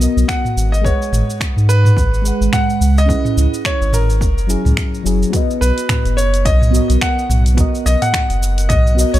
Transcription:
Already playing: B3 A#4 D#5
0.00 F#4 A#4 D#5, shaker
0.17 B1, shaker
0.28 F#5, finger snap, kick, shaker
0.45 mid tom, shaker
0.57 G#1, shaker
0.72 D#5, shaker
0.81 G#3 G#4 C#5, kick
0.85 B4 F#5, shaker
1.02 shaker
1.12 G#1, mid tom, shaker
1.30 shaker
1.41 finger snap, kick, shaker
1.56 G#2, shaker
1.69 B4, shaker
1.85 mid tom, shaker
1.97 G#1, kick, shaker
2.14 shaker
2.22 G#3 G#4 B4, shaker
2.28 F#5
2.41 G#1, shaker
2.53 F#5, finger snap, kick, mid tom, shaker
2.70 shaker
2.81 C#2, shaker
2.98 D#5, shaker
3.06 C#4 G#4 B4, kick
3.10 E4, shaker
3.25 mid tom, shaker
3.37 C#2, shaker
3.54 shaker
3.65 C#5, finger snap, kick, shaker
3.81 G#1, shaker
3.93 A#4, mid tom, shaker
4.10 shaker
4.21 F#1, kick, shaker
4.38 shaker
4.47 F#3 C#4 E4 G#4, shaker
4.65 C#2, mid tom, shaker
4.77 finger snap, kick, shaker
4.94 shaker
5.04 F#1 F#3 C#4 E4 G#4, shaker
5.23 shaker
5.30 B3 F#4, kick, closed hi-hat
5.34 B4 D#5, shaker
5.51 shaker
5.61 B1 B4, shaker
5.78 closed hi-hat, shaker
5.89 finger snap, kick, closed hi-hat, mid tom, shaker
6.05 F#1, closed hi-hat, shaker
6.17 C#5, shaker
6.34 closed hi-hat, shaker
6.45 B1 D#5, kick, closed hi-hat, shaker
6.62 mid tom, shaker
6.71 B3 F#4 A#4, shaker
6.77 D#5
6.89 B1, closed hi-hat, shaker
7.01 F#5, finger snap, kick, closed hi-hat, shaker
7.19 shaker
7.29 B1, mid tom, shaker
7.46 closed hi-hat, shaker
7.55 B3 F#4, kick, closed hi-hat
7.59 A#4 D#5, shaker
7.75 shaker
7.86 B1 D#5, shaker
8.02 F#5, closed hi-hat, mid tom, shaker
8.14 finger snap, kick, closed hi-hat, shaker
8.30 F#1, closed hi-hat, shaker
8.43 shaker
8.58 closed hi-hat, shaker
8.69 B1 D#5, kick, closed hi-hat, mid tom, shaker
8.87 shaker
8.95 B3 F#4
8.99 A#4 D#5, shaker
9.14 B1 C#5, closed hi-hat, shaker

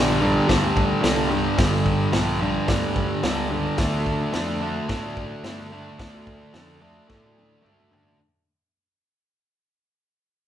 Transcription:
Already playing: A#1 G2 D3 G3
0.21 G2 D3 G3
0.48 D2 G2 D3 G3, kick, snare, open hi-hat
0.77 kick
1.02 C2 G2 D3 G3, snare, open hi-hat
1.30 G2 D3 G3
1.58 G1 G2 D3 G3, kick, snare, open hi-hat
1.86 kick
2.13 A#1 G2 D3 G3, snare, open hi-hat
2.41 G2 D3 G3
2.68 D2 G2 D3 G3, kick, snare, open hi-hat
2.96 kick
3.23 C#2 G2 D3 G3, snare, open hi-hat
3.51 G2 D3 G3
3.78 D2 D3 A3 D4, kick, snare, open hi-hat
4.06 kick
4.33 F2 D3 A3 D4, snare, open hi-hat
4.62 D3 A3 D4
4.89 A2 D3 A3 D4, kick, snare, open hi-hat
5.17 kick
5.43 G2 D3 A3 D4, snare, open hi-hat
5.72 D3 A3 D4
5.99 D2 D3 A3 D4, kick, snare, open hi-hat
6.27 kick
6.54 F2 D3 A3 D4, snare, open hi-hat
6.81 D3 A3 D4
7.08 A2 D3 A3 D4, kick, snare
7.38 high tom
7.63 G2 D3 A3 D4, mid tom
7.80 mid tom
7.92 D3 A3 D4, floor tom
8.08 floor tom

